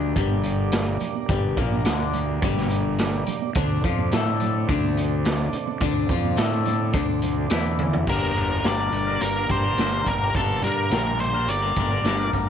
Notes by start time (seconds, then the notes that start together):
Already playing: D2 D3 G3 D4 A#4 D5
0.16 G1 G2 G3, kick, closed hi-hat
0.31 high conga
0.44 closed hi-hat
0.72 snare, closed hi-hat
1.00 muted fingered electric bass stroke, muted clean electric guitar stroke, closed hi-hat, low conga
1.15 high conga
1.29 G1 G2 G3, kick, closed hi-hat
1.57 A#1 A#2 A#3, kick, closed hi-hat
1.72 high conga
1.85 D2 D3 D4, snare, closed hi-hat, low conga
2.14 closed hi-hat, low conga
2.42 G1 G2 G3, kick, closed hi-hat
2.57 snare, high conga
2.70 closed hi-hat
2.99 snare, closed hi-hat
3.27 muted fingered electric bass stroke, muted clean electric guitar stroke, closed hi-hat, low conga
3.42 high conga
3.55 D2 D3 C4 D4 A4 D5, kick, closed hi-hat
3.84 F2 F3 F4, kick, closed hi-hat
3.99 high conga
4.12 A2 A3 A4, snare, closed hi-hat, low conga
4.40 closed hi-hat, low conga
4.69 D2 D3 D4, kick, closed hi-hat
4.84 high conga
4.97 closed hi-hat
5.25 snare, closed hi-hat
5.53 muted fingered electric bass stroke, muted clean electric guitar stroke, closed hi-hat
5.67 high conga
5.81 D2 D3 D4, kick, closed hi-hat
6.09 F2 F3 F4, kick, closed hi-hat
6.25 high conga
6.37 A2 A3 A4, snare, closed hi-hat
6.66 closed hi-hat, high conga, low conga
6.93 D2 D3 D4, kick, closed hi-hat
7.09 high conga
7.22 closed hi-hat, low conga
7.50 E2 E3 E4, snare, closed hi-hat
7.79 high tom, low conga
7.93 floor tom, high conga
8.07 G1 G2 D3 G3 A#3 D4 G4 A#4 D5 A#5, kick, crash
8.35 G1 G3 A#3 D4 A#4, closed hi-hat
8.63 G1 G2 D3 G3 A#3 D4 A#4 D5, snare, closed hi-hat
8.78 G3 A#3 D4 A#4
8.92 G1, muted clean electric guitar stroke, closed hi-hat
9.07 G3 A#3 D4 A#4
9.21 G1 A#4, closed hi-hat
9.36 G3 A#3 D4 A#4
9.49 G1 G3 A#3 D4 A#4 C5, kick, closed hi-hat
9.64 G3 A#3 D4 A#4
9.78 G1 G2 D3 G3 A#3 D4 A#4, snare, closed hi-hat
9.93 G3 A#3 D4 A#4
10.06 G1 A#4, kick, closed hi-hat
10.21 G3 A#3 D4 A#4
10.34 G1 G2 D3 G3 A#3 D4 A4 A#4, kick, closed hi-hat
10.62 G2 G3 A#3 D4 A#4, closed hi-hat
10.67 A#4
10.91 A#1 G2 D3 G3 A#3 D4 A#4, snare, closed hi-hat
11.05 G3 A#3 D4 A#4
11.20 C5, muted clean electric guitar stroke, closed hi-hat
11.34 G3 A#3 D4 A#4
11.48 G1 D5, closed hi-hat
11.62 G3 A#3 D4 A#4
11.76 G1 G3 A#3 D4 A#4, kick, closed hi-hat
11.91 G3 A#3 D4 A#4
12.04 G1 G2 D3 G3 A#3 D4, snare, closed hi-hat
12.08 A#4
12.18 G3 A#3 D4 A#4
12.33 G1, kick, closed hi-hat